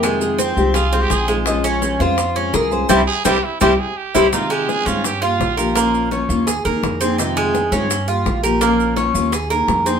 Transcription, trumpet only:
\new Staff \with { instrumentName = "Trumpet" } { \time 4/4 \key f \minor \tempo 4 = 168 r2 f'8. g'16 aes'8. r16 | r1 | r8 aes'8 g'8 e'8 g'8 aes'8 g'4 | f'8 g'8 aes'8 f'8 g'8 f'4.~ |
f'8 r2. r8 | r1 | r1 | }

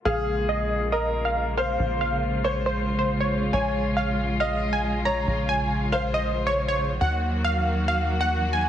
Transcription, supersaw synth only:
\new Staff \with { instrumentName = "Supersaw synth" } { \time 4/4 \key bes \minor \tempo 4 = 138 f''8. r16 ees''8. r16 ees''8 r16 f''8 r16 f''8~ | f''16 r16 f''8. r16 des''16 r16 c''8 r16 c''16 r16 des''8 r16 | aes''8. r16 f''8. r16 f''8 r16 aes''8 r16 bes''8~ | bes''16 r16 aes''8. r16 f''16 r16 ees''8 r16 des''16 r16 des''8 r16 |
ges''8. r16 f''8. r16 f''8 r16 ges''8 r16 aes''8 | }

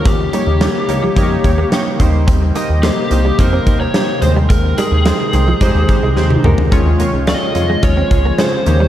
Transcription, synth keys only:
\new Staff \with { instrumentName = "Synth keys" } { \time 4/4 \key des \lydian \tempo 4 = 108 << { <bes ees' g' des''>8 <bes ees' g' des''>8 <bes ees' g' des''>8 <bes ees' g' des''>8 <bes ees' g' des''>8 <bes ees' g' des''>8 <bes ees' g' des''>8 <bes ees' g' c''>8~ | <bes ees' g' c''>8 <bes ees' g' ees''>8 <bes ees' g' c''>8 <bes ees' g' c''>8 <bes ees' g' c''>8 <bes ees' g' c''>8 <bes ees' g' c''>8 <aes ees' g' c''>8~ | <aes ees' g' c''>8 <aes ees' g' bes'>8 <aes ees' g' c''>8 <aes ees' g' c''>8 <aes ees' g' c''>8 <aes ees' g' c''>8 <aes ees' g' c''>8 <aes ees' g' bes'>8 | <aes des' f' des''>8 <aes des' f' des''>8 <aes des' f' des''>8 <aes des' f' des''>8 <aes des' f' des''>8 <aes des' f' des''>8 <aes des' f' des''>8 <bes ees' g' des''>8 | } \\ { ees4 r2 r8 ees8~ | ees4 r2 r8 ees8~ | ees4 r2. | ees4. r2 ees8 | } >> }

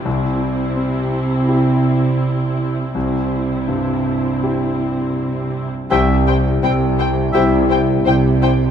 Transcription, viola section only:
\new Staff \with { instrumentName = "Viola section" } { \time 4/4 \key c \mixolydian \tempo 4 = 83 <c' e'>1 | <c' e'>2.~ <c' e'>8 r8 | \key c \major e'8 e'8 e'8 e'8 e'8 e'8 e'8 e'8 | }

